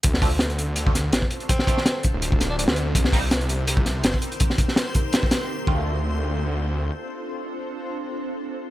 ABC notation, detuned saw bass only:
X:1
M:4/4
L:1/16
Q:"Swing 16ths" 1/4=165
K:Dphr
V:1 name="Detuned saw bass" clef=bass
D,,8 D,,4 A,,, z3 | z6 z D,,,6 D,,3 | C,,8 C,,4 G,,, z3 | z12 z2 D,,2- |
D,,12 z4 | z16 |]